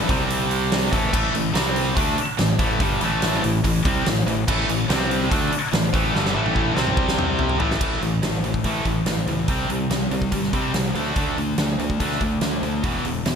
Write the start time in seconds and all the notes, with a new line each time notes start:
0.09 C2 C3 G3 C4, kick, open hi-hat
0.30 open hi-hat
0.51 open hi-hat
0.72 snare, open hi-hat
0.92 A1 A2 E3 A3, kick, snare, open hi-hat
1.13 A1 A2 E3 A3, kick, crash
1.34 A1 A2 E3, open hi-hat
1.54 C2 C3 G3 C4, snare, open hi-hat
1.76 open hi-hat
1.96 D2 D3 A3 D4, kick, open hi-hat
2.18 muted fingered electric bass stroke, muted distorted electric guitar stroke, open hi-hat
2.39 A1 A2 E3, snare, open hi-hat
2.59 A1 A2 E3 A3, kick, open hi-hat
2.80 G1 G2 D3 G3, kick, open hi-hat
3.01 A1 A2 E3 A3, open hi-hat
3.22 snare, open hi-hat
3.33 snare
3.44 A1 A2 E3, open hi-hat
3.64 A1 A2 E3, kick, open hi-hat
3.85 C2 C3 G3 C4, kick, open hi-hat
4.06 A1 A2 E3, snare, open hi-hat
4.26 A1 A2 E3, open hi-hat
4.47 A1 A2 E3 A3, kick, crash
4.68 A1 A2 E3, open hi-hat
4.88 C2 C3 G3 C4, snare, open hi-hat
5.01 snare
5.11 open hi-hat
5.30 D2 D3 A3 D4, kick, open hi-hat
5.51 muted distorted electric guitar stroke, muted fingered electric bass stroke, open hi-hat
5.72 A1 A2 E3, snare, open hi-hat
5.93 A1 A2 E3 A3, kick, open hi-hat
6.14 G1 G2 D3 G3, snare
6.25 snare
6.35 A1 A2 E3 A3
6.46 high tom
6.56 kick
6.76 C2 C3 G3 C4, snare
6.87 mid tom
6.97 kick
7.08 snare
7.19 mid tom
7.39 floor tom
7.49 floor tom
7.59 A1 A2 E3 A3, floor tom
7.71 snare
7.80 A1 A2 E3 A3, kick, crash
8.01 A1 A2 E3, open hi-hat
8.23 A1 A2 E3, snare, open hi-hat
8.43 A1 A2 E3, open hi-hat
8.54 kick
8.64 A1 A2 E3 A3, kick, open hi-hat
8.85 A1 A2 E3, kick, open hi-hat
9.06 A1 A2 E3, snare, open hi-hat
9.27 C#2 A2 E3, open hi-hat
9.48 C2 C3 G3 C4, kick, open hi-hat
9.69 C2 C3 G3, open hi-hat
9.90 C2 C3 G3, snare, open hi-hat
10.11 C2 C3 G3, open hi-hat
10.22 kick
10.32 G1 C3 G3, kick, open hi-hat
10.43 snare
10.53 C3 G3 C4, kick, open hi-hat
10.74 C2 C3 G3, snare, open hi-hat
10.94 D2 D3 A3 D4, open hi-hat
11.16 D2 D3 A3 D4, kick, open hi-hat
11.37 D2 D3 A3, open hi-hat
11.58 D2 D3 A3, snare, open hi-hat
11.79 D2 D3 A3, open hi-hat
11.90 kick
12.00 D2 D3 A3 D4, kick, open hi-hat
12.11 snare
12.20 D2 D3 A3, kick, open hi-hat
12.41 D2 D3 A3, snare, open hi-hat
12.62 D2 D3 A3, open hi-hat
12.83 E1 E2 B2 E3, kick, open hi-hat
13.05 E1 E2 B2, open hi-hat
13.25 E1 E2 B2, snare, open hi-hat